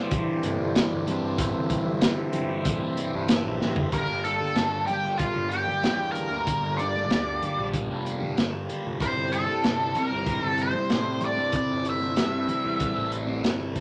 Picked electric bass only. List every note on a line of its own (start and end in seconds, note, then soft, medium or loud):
0.43 0.58 G1 medium
0.60 0.74 G1 medium
0.92 1.06 G1 medium
1.08 1.37 G2 loud
1.38 1.53 G1 loud
1.55 2.78 G1 medium
3.14 3.43 G2 medium
3.45 3.59 A#1 medium
3.61 3.75 A1 medium
3.77 3.91 G1 medium
3.93 4.07 G1 medium
4.08 4.38 G1 medium
4.56 4.85 G1 medium
5.04 5.33 G1 medium
5.36 5.65 G1 medium
5.83 6.31 E2 medium
6.31 6.45 D2 medium
6.63 7.11 G1 medium
7.11 7.40 D2 medium
7.58 7.87 A#1 medium
7.90 8.34 F1 medium
8.37 8.66 G1 medium
8.85 8.99 F1 medium
9.01 9.15 G1 medium
9.16 9.46 G1 medium
9.64 9.93 G1 medium
10.12 10.41 G1 medium
10.43 10.72 G1 medium
10.90 11.38 A2 medium
11.38 11.53 G2 medium
11.70 12.19 G1 medium
12.17 12.47 G2 medium
12.65 12.94 E2 medium
12.96 13.41 A1 medium
13.44 13.74 G1 medium